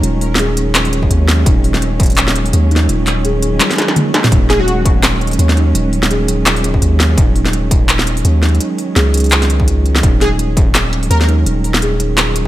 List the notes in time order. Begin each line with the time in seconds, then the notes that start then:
Already playing: D#3 F#3 G#3 C#4
0.03 D#1 F4, closed hi-hat
0.21 open hi-hat
0.35 G#4, snare, closed hi-hat
0.57 D#4, closed hi-hat
0.75 F4, clap, snare, closed hi-hat
0.85 open hi-hat
0.93 closed hi-hat
1.03 kick
1.11 D#2, closed hi-hat
1.28 snare, closed hi-hat
1.46 D#1 D#4, kick, closed hi-hat
1.64 D#4, open hi-hat
1.74 snare
1.82 closed hi-hat
2.00 kick, closed hi-hat
2.03 closed hi-hat
2.06 closed hi-hat
2.10 closed hi-hat
2.12 closed hi-hat
2.15 clap, closed hi-hat
2.18 closed hi-hat
2.28 snare
2.36 closed hi-hat
2.46 open hi-hat
2.53 D#2, closed hi-hat
2.71 D#4, closed hi-hat
2.76 snare
2.89 D#1 F4, closed hi-hat
3.07 clap, open hi-hat
3.25 G#4, closed hi-hat
3.43 D#4, closed hi-hat
3.60 F4, clap, closed hi-hat, high tom
3.71 snare, open hi-hat
3.76 snare
3.78 snare, closed hi-hat
3.82 snare
3.88 snare
3.96 A#3, closed hi-hat, mid tom
4.14 snare, closed hi-hat
4.24 snare, mid tom
4.32 D#1 D#4, kick, closed hi-hat
4.50 D#4 G#4, snare, open hi-hat
4.60 F#4
4.68 closed hi-hat
4.85 kick, closed hi-hat
5.03 clap, snare, closed hi-hat
5.21 closed hi-hat
5.27 closed hi-hat
5.31 closed hi-hat, open hi-hat
5.39 D#2, closed hi-hat
5.49 snare
5.57 D#4, closed hi-hat
5.75 D#1 D#4, closed hi-hat
5.93 open hi-hat
6.03 snare
6.11 G#4, closed hi-hat
6.28 D#4, closed hi-hat
6.46 F4, clap, snare, closed hi-hat
6.56 open hi-hat
6.64 closed hi-hat
6.74 kick
6.82 D#2, closed hi-hat
7.00 snare, closed hi-hat
7.18 D#1 D#4, kick, closed hi-hat
7.35 D#4, open hi-hat
7.46 snare
7.53 closed hi-hat
7.71 kick, closed hi-hat
7.89 clap, closed hi-hat
7.99 snare
8.07 closed hi-hat
8.17 open hi-hat
8.25 D#2, closed hi-hat
8.43 D#4, snare, closed hi-hat
8.49 closed hi-hat
8.55 closed hi-hat
8.60 D#4, closed hi-hat
8.78 open hi-hat
8.96 C#2 G#4, snare, closed hi-hat
9.14 D#4, closed hi-hat
9.17 closed hi-hat
9.20 closed hi-hat
9.24 closed hi-hat
9.26 closed hi-hat
9.30 F4, clap, closed hi-hat
9.32 closed hi-hat
9.42 snare, open hi-hat
9.50 closed hi-hat
9.60 kick
9.68 closed hi-hat
9.86 closed hi-hat
9.96 snare
10.03 D#1 D#4, kick, closed hi-hat
10.21 D#4 G#4, snare, open hi-hat
10.39 closed hi-hat
10.57 kick, closed hi-hat
10.75 clap, snare, closed hi-hat
10.93 closed hi-hat
11.03 open hi-hat
11.10 D#2 A#4, closed hi-hat
11.21 A#4, snare
11.28 D#4, closed hi-hat
11.46 D#1 D#4, closed hi-hat
11.64 open hi-hat
11.74 snare
11.82 G#4, closed hi-hat
12.00 D#4, closed hi-hat
12.18 F4, clap, snare, closed hi-hat
12.36 closed hi-hat